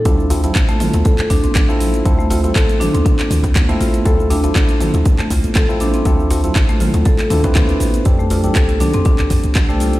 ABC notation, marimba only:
X:1
M:4/4
L:1/16
Q:"Swing 16ths" 1/4=120
K:Dm
V:1 name="Marimba"
D z4 A, F z A z D C D z3 | z A, F z A z D C D z4 A, F z | A z D C D z4 A, F z A z D C | D z4 A, F z A z D C D z3 |
z A, F z A z D C D z4 A, F z |]